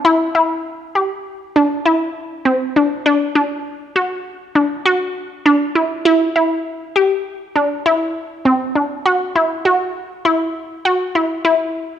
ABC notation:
X:1
M:5/4
L:1/8
Q:1/4=100
K:Clyd
V:1 name="Synth pluck"
E E2 G2 D E2 C D | D D2 F2 D F2 D E | E E2 G2 D E2 C D | F E F2 E2 F E E2 |]